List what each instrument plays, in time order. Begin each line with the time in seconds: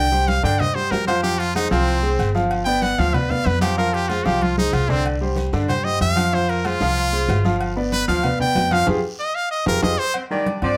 Already playing: upright bass C2, trumpet G5
0.12 grand piano G3 G4 C5, high conga
0.28 trumpet F5, high conga, low agogo, short guiro
0.43 upright bass G2, grand piano D3 D4 D5, trumpet G5, low agogo, short guiro
0.60 grand piano G3 C5, trumpet D#5, high conga, low conga, low agogo, long guiro
0.75 grand piano G3 G4 C5, trumpet C5, high conga
0.91 upright bass F2, trumpet A#4, high conga, low timbale, low agogo, short guiro
1.07 grand piano F3 F4 F5, trumpet C5, high conga, low agogo, short guiro
1.23 grand piano F3 F4 F5, trumpet G4, high conga, long guiro
1.39 trumpet F4, high conga, low agogo
1.55 grand piano G#3 G#4 C5, trumpet D#4, high conga, low agogo, short guiro
1.71 upright bass C2, grand piano F3 F4 F5, trumpet C4, high conga, short guiro
1.87 high conga, low agogo, long guiro
2.02 grand piano G#3 G#4 C5, high conga
2.19 upright bass G1, high conga, low agogo, short guiro
2.35 grand piano F3 F4 F5, short guiro
2.51 high conga, low agogo, long guiro
2.65 grand piano B3 B4 D5, trumpet G5, high conga
2.82 trumpet F#5, high conga, low agogo, short guiro
2.98 upright bass D2, grand piano F3 F4 F5, trumpet F5, high conga, low agogo, short guiro
3.14 grand piano B3 B4 D5, trumpet B4, high conga, low conga, low agogo, long guiro
3.30 grand piano B3 B4 D5, trumpet F5, high conga, low conga
3.46 upright bass F2, trumpet B4, high conga, low agogo, short guiro
3.61 grand piano F3 F4 F5, trumpet G4, high conga, low agogo, short guiro
3.77 grand piano F3 F4 F5, trumpet A#4, high conga, long guiro
3.94 trumpet G4, high conga, low agogo
4.09 grand piano G#3 G#4 C5, trumpet F4, high conga, low agogo, short guiro
4.25 upright bass C2, grand piano F3 F4 F5, trumpet G4, high conga, short guiro
4.41 trumpet F4, high conga, low agogo, long guiro
4.57 grand piano G#3 G#4 C5, trumpet D#4, high conga
4.73 upright bass C2, trumpet F4, low conga, low agogo, short guiro
4.89 grand piano D3 D4 D5, trumpet C4, low conga, short guiro
5.05 high conga, low agogo, long guiro
5.21 grand piano G3 G4 C5, high conga
5.36 high conga, low agogo, short guiro
5.53 upright bass G2, grand piano D3 D4 D5, high conga, low agogo, short guiro
5.68 grand piano G3 G4 C5, trumpet C5, high conga, low conga, low agogo, long guiro
5.84 grand piano G3 G4 C5, trumpet D#5, high conga
6.00 upright bass F2, trumpet F5, high conga, low agogo, short guiro
6.16 grand piano F3 F4 F5, high conga, low agogo, short guiro
6.33 grand piano F3 F4 F5, trumpet C5, long guiro
6.49 trumpet A#4, high conga, low agogo
6.65 grand piano G#3 G#4 C5, trumpet F4, high conga, low agogo, short guiro
6.81 upright bass C2, grand piano F3 F4 F5, high conga, short guiro
6.97 high conga, low agogo
7.13 grand piano G#3 G#4 C5, high conga
7.29 upright bass G1, high conga, low timbale, low agogo, short guiro
7.44 grand piano F3 F4 F5, high conga, short guiro
7.60 high conga, low agogo, long guiro
7.76 grand piano B3 B4 D5, high conga
7.92 trumpet B4, high conga, low agogo, short guiro
8.08 upright bass D2, grand piano F3 F4 F5, trumpet F5, low agogo, short guiro
8.23 grand piano B3 B4 D5, high conga, low conga, low agogo, long guiro
8.40 grand piano B3 B4 D5, trumpet G5, high conga, low conga
8.55 upright bass F2, high conga, low timbale, low agogo, short guiro
8.71 grand piano F3 F4 F5, trumpet F5, high conga, low agogo, short guiro
8.87 upright bass F2, grand piano F4 G4 G#4, high conga, high timbale, long guiro
9.20 trumpet D#5
9.35 trumpet F5
9.51 trumpet D#5
9.66 upright bass F2, grand piano F4 G4 G#4, trumpet A#4, high conga, high timbale, long guiro
9.82 upright bass F2, grand piano F4 G4 G#4, trumpet D#5, high conga, high timbale, long guiro
9.99 trumpet C5
10.14 horn section C4 C5, high conga, low agogo
10.30 baritone saxophone D#3, grand piano G3 G4 G5, horn section D4 D5, high conga
10.46 high conga, low agogo
10.62 upright bass G2, baritone saxophone F3, grand piano C4 C5 C6, horn section D4 D5, high conga, low agogo